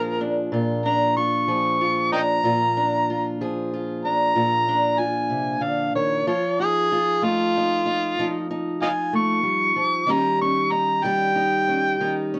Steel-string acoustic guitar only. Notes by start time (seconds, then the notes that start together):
Already playing: A#2 F3 D4 F4 G#4
0.21 D4
0.52 A#2 F4
0.86 D4
1.17 F4
1.48 F3 G#4
1.81 F4
2.13 D4
2.43 A#2 F4
2.77 D4
3.10 F4
3.41 F3 G#4
3.74 F4
4.05 D4
4.36 A#2 F4
4.68 D4
4.99 F4
5.30 C3
5.61 D3
5.95 D#3
6.27 F3 F4
6.59 D#4
6.92 F4
7.22 A3 D#4
7.57 D#4
7.86 D#4
8.19 F3 D#4
8.51 D#4
8.82 F4
9.13 A3
9.43 G3
9.76 F3
10.07 D#3 G3 C#4 D#4 G4
10.41 C#4
10.72 D#4
11.04 G3 G4
11.36 D#4
11.69 C#4
12.00 D#3 D#4
12.34 C#4